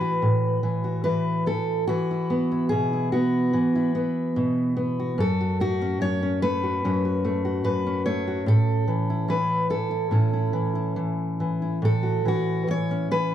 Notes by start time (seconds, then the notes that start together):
Already playing: A2 E3 B4
0.01 F#4
0.22 A2
0.63 E3
0.84 F#4
1.04 E3 B4
1.46 E3 A4
1.87 E3 F#4
2.11 E4
2.30 B3
2.52 E4
2.69 B2 G#4
2.93 E4
3.12 B3 F#4
3.53 E3
3.75 E4
3.95 B3
4.36 B2
4.77 B3
5.00 F#4
5.18 F#2 A4
5.41 F#4
5.60 A3 F#4
5.82 C#4
6.01 F#2 C#5
6.23 C#4
6.42 A3 B4
6.63 F#4
6.84 F#2 C#4 F#4
7.05 F#4
7.25 A3
7.45 F#4
7.64 F#2 B4
7.87 C#4
8.06 A3 C#5
8.27 F#4
8.46 A2 A4
8.88 E3
9.10 E4
9.28 E3 B4
9.70 E3 A4
9.91 E4
10.11 A2 C#4 E4
10.33 E4
10.53 E3
10.75 E4
10.96 E3
11.40 E3
11.62 E4
11.82 A2 A4
12.03 F#4
12.25 E3 F#4
12.67 E3 C#5
12.91 C#4
13.11 E3 B4